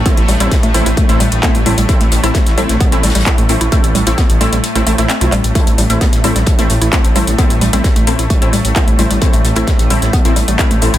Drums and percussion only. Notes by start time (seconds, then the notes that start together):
0.06 kick, closed hi-hat
0.17 closed hi-hat
0.28 closed hi-hat, open hi-hat
0.40 closed hi-hat
0.51 kick, snare, closed hi-hat
0.63 closed hi-hat
0.74 closed hi-hat, open hi-hat
0.86 closed hi-hat
0.97 kick, closed hi-hat
1.09 closed hi-hat
1.20 closed hi-hat, open hi-hat
1.32 closed hi-hat
1.43 kick, snare, clap, closed hi-hat
1.55 closed hi-hat
1.66 closed hi-hat, open hi-hat
1.78 closed hi-hat
1.89 kick, closed hi-hat
2.00 closed hi-hat
2.12 closed hi-hat, open hi-hat
2.23 closed hi-hat
2.34 kick, snare, closed hi-hat
2.47 snare, closed hi-hat
2.58 closed hi-hat, open hi-hat
2.69 snare, closed hi-hat
2.81 kick, closed hi-hat
2.92 closed hi-hat
3.03 snare, closed hi-hat, open hi-hat
3.09 snare, closed hi-hat
3.15 snare, closed hi-hat
3.20 snare, closed hi-hat
3.26 kick, clap, closed hi-hat
3.38 closed hi-hat
3.49 closed hi-hat, open hi-hat
3.61 closed hi-hat
3.72 kick, closed hi-hat
3.84 closed hi-hat
3.95 closed hi-hat, open hi-hat
4.07 closed hi-hat
4.18 kick, snare, closed hi-hat
4.30 closed hi-hat
4.41 closed hi-hat, open hi-hat
4.53 closed hi-hat
4.64 closed hi-hat
4.76 closed hi-hat
4.87 closed hi-hat, open hi-hat
4.98 closed hi-hat
5.09 snare, clap, closed hi-hat
5.21 closed hi-hat
5.32 clap, closed hi-hat, open hi-hat
5.44 closed hi-hat
5.55 kick, closed hi-hat
5.67 closed hi-hat
5.78 closed hi-hat, open hi-hat
5.90 closed hi-hat
6.01 kick, snare, closed hi-hat
6.13 snare, closed hi-hat
6.24 closed hi-hat, open hi-hat
6.36 snare, closed hi-hat
6.47 kick, closed hi-hat
6.59 closed hi-hat
6.70 closed hi-hat, open hi-hat
6.82 closed hi-hat
6.93 kick, snare, clap, closed hi-hat
7.04 closed hi-hat
7.16 closed hi-hat, open hi-hat
7.27 closed hi-hat
7.38 kick, closed hi-hat
7.50 closed hi-hat
7.61 closed hi-hat, open hi-hat
7.73 closed hi-hat
7.84 kick, snare, closed hi-hat
7.96 closed hi-hat
8.07 closed hi-hat, open hi-hat
8.19 closed hi-hat
8.30 kick, closed hi-hat
8.42 closed hi-hat
8.53 closed hi-hat, open hi-hat
8.65 closed hi-hat
8.75 kick, snare, clap, closed hi-hat
8.88 closed hi-hat
8.99 closed hi-hat, open hi-hat
9.11 closed hi-hat
9.22 kick, closed hi-hat
9.33 closed hi-hat
9.45 closed hi-hat, open hi-hat
9.56 closed hi-hat
9.67 kick, snare, closed hi-hat
9.79 snare, closed hi-hat
9.90 closed hi-hat, open hi-hat
10.02 snare, closed hi-hat
10.13 kick, closed hi-hat
10.25 closed hi-hat
10.36 closed hi-hat, open hi-hat
10.48 closed hi-hat
10.59 kick, snare, clap, closed hi-hat
10.71 closed hi-hat
10.82 closed hi-hat, open hi-hat
10.94 closed hi-hat